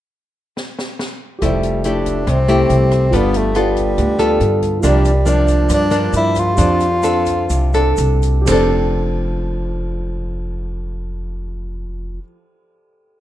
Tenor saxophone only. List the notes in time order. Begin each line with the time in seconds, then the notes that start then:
1.45 G3
1.87 D4
2.30 C4
3.15 B3
3.37 A3
3.59 G3
4.87 G3
5.30 D4
5.74 D4
6.17 E4
6.39 F4